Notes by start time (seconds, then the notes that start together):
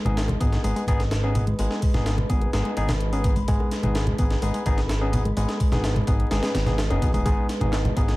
Already playing: G#3 G#4 B4 D#5 B5
0.05 G#1 B3 D#4 G#4, closed hi-hat, low conga
0.17 snare, closed hi-hat
0.28 G#3, closed hi-hat, high bongo, high conga, low conga
0.40 G#1 B3 D#4 G#4, kick, closed hi-hat
0.53 snare, closed hi-hat
0.64 G#1 G#3 B3 D#4 G#4, closed hi-hat
0.76 G#3, closed hi-hat, high bongo
0.87 G#1 B3 D#4 G#4, kick, closed hi-hat, high conga
1.00 snare, closed hi-hat
1.11 snare, closed hi-hat, high bongo
1.23 B3 C#4 D#4 G#4
1.35 B3, closed hi-hat, low conga
1.47 G#3, closed hi-hat, high conga
1.59 G#1 G#3 B3 D#4 G#4, closed hi-hat, high bongo
1.71 snare
1.82 kick, closed hi-hat, open hi-hat
1.94 G#1 B3 D#4 G#4, snare, closed hi-hat, high bongo, low conga
2.06 snare, closed hi-hat
2.17 G#3, closed hi-hat, high conga, low conga
2.30 G#1 B3 D#4 G#4, kick, closed hi-hat
2.42 closed hi-hat, high bongo
2.53 G#1 G#3 B3 D#4 G#4, snare, closed hi-hat
2.65 G#3, closed hi-hat
2.77 G#1 B3 D#4 G#4, closed hi-hat, high bongo, high conga
2.88 snare, closed hi-hat, low conga
3.00 closed hi-hat
3.13 B3 C#4 D#4 G#4, closed hi-hat
3.24 B3, kick, closed hi-hat, high bongo
3.36 G#3, closed hi-hat, high conga
3.48 G#1 G#3 B3 D#4 G#4, kick, closed hi-hat
3.60 high bongo
3.71 snare, closed hi-hat
3.83 G#1 B3 D#4 G#4, closed hi-hat, low conga
3.95 snare, closed hi-hat
4.07 G#3, closed hi-hat, high bongo, high conga, low conga
4.19 G#1 B3 D#4 G#4, kick, closed hi-hat
4.30 snare, closed hi-hat
4.42 G#1 G#3 B3 D#4 G#4, closed hi-hat, high bongo
4.54 G#3, closed hi-hat
4.65 G#1 B3 D#4 G#4, kick, closed hi-hat, high conga
4.78 snare, closed hi-hat
4.88 snare, closed hi-hat, high bongo
5.01 B3 C#4 D#4 G#4
5.13 B3, closed hi-hat, low conga
5.25 G#3, closed hi-hat, high bongo, high conga
5.37 G#1 G#3 B3 D#4 G#4, closed hi-hat
5.49 snare, closed hi-hat
5.60 kick, closed hi-hat, open hi-hat
5.72 G#1 B3 D#4 G#4, snare, closed hi-hat, high bongo, low conga
5.84 snare, closed hi-hat
5.96 G#3, closed hi-hat, high conga, low conga
6.07 G#1 B3 D#4 G#4, kick, closed hi-hat, high bongo
6.20 closed hi-hat
6.31 G#1 G#3 B3 D#4 G#4, snare, closed hi-hat
6.43 G#3, snare, closed hi-hat
6.54 G#1, snare, closed hi-hat, high bongo, high conga
6.66 B3 D#4 G#4, snare, closed hi-hat, low conga
6.78 snare, closed hi-hat
6.90 F#1 B3 C#4 D#4 G#4, closed hi-hat, high bongo
7.02 B1 B3, kick, closed hi-hat
7.13 D#1 G#3 B3 D#4 G#4, closed hi-hat, high conga
7.25 G#1 G#3 B3 D#4 G#4 F5, kick, closed hi-hat
7.49 snare, closed hi-hat, high bongo
7.61 G#1 B3 D#4 G#4, closed hi-hat, low conga
7.73 snare, clap, closed hi-hat
7.84 G#3, closed hi-hat, high bongo, high conga, low conga
7.96 G#1 B3 D#4 G#4, kick, closed hi-hat
8.08 snare, closed hi-hat